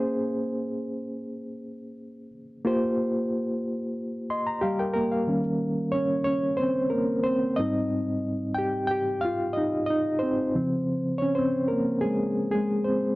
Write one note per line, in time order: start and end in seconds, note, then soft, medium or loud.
0.00 2.29 A#3 medium
0.00 2.29 C#4 medium
0.00 2.29 G#4 medium
0.00 2.30 C5 medium
2.65 4.95 A#3 medium
2.65 5.25 F4 medium
2.65 4.60 G4 medium
2.65 4.27 C5 medium
4.30 4.46 D#5 soft
4.30 4.46 C6 medium
4.47 4.62 A#5 medium
4.61 4.94 G3 medium
4.61 4.96 G4 medium
4.61 4.78 F5 medium
4.79 4.92 A#4 medium
4.79 5.11 G5 medium
4.93 5.91 A#3 medium
4.93 5.96 A#4 medium
5.12 5.43 F5 medium
5.27 6.23 D#3 medium
5.27 6.23 G3 soft
5.27 5.93 C#4 medium
5.92 6.25 C#4 medium
5.92 6.23 C#5 medium
6.24 6.58 C#4 medium
6.24 6.56 C#5 medium
6.57 6.91 C4 medium
6.57 6.93 C5 medium
6.90 7.24 A#3 medium
6.90 7.26 A#4 medium
7.24 7.41 C4 medium
7.24 7.39 C5 medium
7.56 8.03 G#2 soft
7.56 8.03 G3 soft
7.56 8.03 C4 medium
7.56 8.54 D#4 medium
7.56 8.53 D#5 medium
8.54 8.89 G4 medium
8.54 8.86 G5 medium
8.87 9.22 G4 medium
8.87 9.20 G5 medium
9.21 9.55 F4 medium
9.21 9.57 F5 medium
9.53 9.69 D#5 medium
9.57 9.72 D#4 medium
9.86 10.21 D#4 medium
9.86 10.22 D#5 medium
10.19 10.55 C4 medium
10.19 11.16 C5 medium
10.55 11.50 C#3 medium
10.55 11.51 F3 medium
10.55 11.37 C4 medium
11.18 11.37 C#4 medium
11.18 11.37 C#5 medium
11.35 11.69 C4 medium
11.35 11.71 C5 medium
11.68 12.02 A#3 medium
11.68 12.04 A#4 medium
12.01 12.51 G#3 medium
12.01 12.49 G#4 medium
12.51 12.85 G#3 medium
12.51 12.87 G#4 medium
12.85 13.15 C4 medium
12.85 13.15 C5 medium